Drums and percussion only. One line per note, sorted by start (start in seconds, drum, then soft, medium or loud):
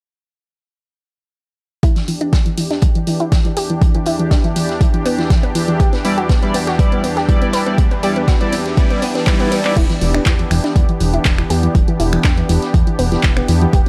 1.83 kick loud
1.83 closed hi-hat medium
1.95 snare soft
1.95 closed hi-hat soft
2.08 closed hi-hat medium
2.08 open hi-hat medium
2.21 closed hi-hat soft
2.33 kick medium
2.33 snare loud
2.33 closed hi-hat medium
2.46 closed hi-hat soft
2.57 closed hi-hat medium
2.57 open hi-hat medium
2.70 snare soft
2.70 closed hi-hat soft
2.82 kick loud
2.82 closed hi-hat medium
2.95 closed hi-hat soft
3.07 closed hi-hat medium
3.07 open hi-hat medium
3.20 closed hi-hat soft
3.32 kick medium
3.32 snare loud
3.32 closed hi-hat medium
3.45 closed hi-hat soft
3.57 closed hi-hat medium
3.57 open hi-hat medium
3.70 closed hi-hat soft
3.82 kick loud
3.82 closed hi-hat medium
3.95 closed hi-hat soft
4.05 closed hi-hat medium
4.05 open hi-hat loud
4.19 closed hi-hat soft
4.31 kick loud
4.31 snare loud
4.31 closed hi-hat medium
4.44 closed hi-hat soft
4.56 closed hi-hat medium
4.56 open hi-hat loud
4.69 snare soft
4.69 closed hi-hat soft
4.81 kick loud
4.81 closed hi-hat medium
4.94 closed hi-hat soft
5.06 closed hi-hat medium
5.06 open hi-hat medium
5.19 snare soft
5.19 closed hi-hat soft
5.30 kick loud
5.30 snare loud
5.30 closed hi-hat medium
5.43 closed hi-hat soft
5.55 closed hi-hat medium
5.55 open hi-hat loud
5.68 closed hi-hat soft
5.80 kick loud
5.80 closed hi-hat medium
5.93 snare soft
5.93 closed hi-hat soft
6.05 closed hi-hat medium
6.05 open hi-hat loud
6.18 closed hi-hat soft
6.29 kick loud
6.29 snare loud
6.29 closed hi-hat medium
6.43 closed hi-hat soft
6.54 closed hi-hat medium
6.54 open hi-hat loud
6.67 snare soft
6.67 closed hi-hat soft
6.79 kick loud
6.79 closed hi-hat medium
6.92 closed hi-hat soft
7.03 closed hi-hat medium
7.03 open hi-hat loud
7.17 snare soft
7.17 closed hi-hat soft
7.29 kick loud
7.29 closed hi-hat medium
7.42 closed hi-hat soft
7.53 snare loud
7.53 closed hi-hat medium
7.53 open hi-hat loud
7.67 closed hi-hat soft
7.78 kick loud
7.78 closed hi-hat medium
7.91 closed hi-hat soft
8.03 closed hi-hat medium
8.03 open hi-hat loud
8.16 closed hi-hat soft
8.27 kick loud
8.27 snare loud
8.27 closed hi-hat medium
8.41 closed hi-hat soft
8.52 closed hi-hat medium
8.52 open hi-hat loud
8.66 snare soft
8.66 closed hi-hat soft
8.77 kick loud
8.77 closed hi-hat medium
8.90 closed hi-hat soft
9.02 closed hi-hat medium
9.02 open hi-hat loud
9.15 snare soft
9.15 closed hi-hat soft
9.27 kick loud
9.27 snare loud
9.27 clap loud
9.27 closed hi-hat medium
9.40 closed hi-hat soft
9.52 closed hi-hat medium
9.52 open hi-hat loud
9.65 clap medium
9.65 closed hi-hat soft
9.76 kick loud
9.76 closed hi-hat medium
9.76 crash medium
9.89 snare soft
9.89 closed hi-hat soft
10.01 closed hi-hat medium
10.01 open hi-hat loud
10.14 finger snap medium
10.14 closed hi-hat soft
10.26 kick loud
10.26 snare loud
10.26 clap loud
10.26 closed hi-hat medium
10.39 closed hi-hat soft
10.51 finger snap medium
10.51 closed hi-hat medium
10.51 open hi-hat loud
10.64 snare soft
10.64 closed hi-hat soft
10.76 kick loud
10.76 closed hi-hat medium
10.89 closed hi-hat soft
11.00 closed hi-hat medium
11.00 open hi-hat loud
11.14 closed hi-hat soft
11.25 kick loud
11.25 snare loud
11.25 clap loud
11.25 closed hi-hat medium
11.38 finger snap medium
11.38 closed hi-hat soft
11.50 closed hi-hat medium
11.50 open hi-hat loud
11.63 closed hi-hat soft
11.75 kick loud
11.75 closed hi-hat medium
11.88 closed hi-hat soft
12.00 closed hi-hat medium
12.00 open hi-hat loud
12.13 finger snap medium
12.13 closed hi-hat soft
12.24 kick loud
12.24 snare loud
12.24 clap loud
12.24 closed hi-hat medium
12.38 closed hi-hat soft
12.49 closed hi-hat medium
12.49 open hi-hat loud
12.62 snare soft
12.62 closed hi-hat soft
12.74 kick loud
12.74 closed hi-hat medium
12.87 closed hi-hat soft
12.99 closed hi-hat medium
12.99 open hi-hat loud
13.12 snare soft
13.12 closed hi-hat soft
13.23 kick loud
13.23 snare loud
13.23 clap loud
13.23 closed hi-hat medium
13.37 finger snap medium
13.37 closed hi-hat soft
13.48 closed hi-hat medium
13.48 open hi-hat loud
13.61 closed hi-hat soft
13.73 kick loud
13.73 closed hi-hat medium